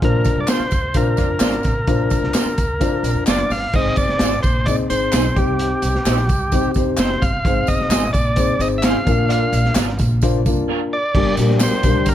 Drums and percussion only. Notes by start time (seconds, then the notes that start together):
0.02 kick, closed hi-hat
0.24 kick, closed hi-hat, tambourine
0.48 snare, clap, closed hi-hat, tambourine
0.61 snare
0.71 kick, closed hi-hat, tambourine
0.94 kick, closed hi-hat, tambourine
1.17 kick, closed hi-hat, tambourine
1.40 snare, clap, closed hi-hat, tambourine
1.53 closed hi-hat
1.63 kick, snare, closed hi-hat, tambourine
1.87 kick, closed hi-hat, tambourine
2.10 kick, closed hi-hat, tambourine
2.23 snare
2.34 snare, clap, closed hi-hat, tambourine
2.47 snare
2.58 kick, closed hi-hat, tambourine
2.81 kick, closed hi-hat, tambourine
3.04 closed hi-hat, tambourine
3.27 snare, clap, closed hi-hat, tambourine
3.38 closed hi-hat
3.50 snare, open hi-hat, tambourine
3.73 kick, crash, tambourine
3.96 kick, closed hi-hat, tambourine
4.09 snare
4.19 snare, clap, closed hi-hat, tambourine
4.32 snare
4.43 kick, closed hi-hat, tambourine
4.66 kick, closed hi-hat, tambourine
4.90 closed hi-hat, tambourine
5.12 snare, clap, closed hi-hat, tambourine
5.36 kick, closed hi-hat, tambourine
5.59 closed hi-hat, tambourine
5.82 closed hi-hat, tambourine
5.95 snare
6.06 snare, clap, closed hi-hat, tambourine
6.18 snare
6.29 kick, closed hi-hat, tambourine
6.52 kick, closed hi-hat, tambourine
6.74 kick, closed hi-hat, tambourine
6.97 snare, clap, closed hi-hat, tambourine
7.22 kick, closed hi-hat, tambourine
7.45 kick, closed hi-hat, tambourine
7.67 kick, closed hi-hat, tambourine
7.81 snare
7.91 snare, clap, closed hi-hat, tambourine
8.03 snare
8.13 kick, closed hi-hat, tambourine
8.36 kick, closed hi-hat, tambourine
8.60 closed hi-hat, tambourine
8.83 snare, clap, closed hi-hat, tambourine
9.07 kick, closed hi-hat, tambourine
9.30 closed hi-hat, tambourine
9.53 closed hi-hat, tambourine
9.65 snare
9.75 snare, clap, closed hi-hat, tambourine
9.89 snare
9.99 kick, closed hi-hat, tambourine
10.21 kick, closed hi-hat, tambourine
10.46 kick, closed hi-hat, tambourine
11.15 kick, crash
11.37 closed hi-hat, tambourine
11.50 snare
11.60 snare, clap, closed hi-hat, tambourine
11.73 snare
11.83 kick, closed hi-hat, tambourine
12.06 kick, closed hi-hat, tambourine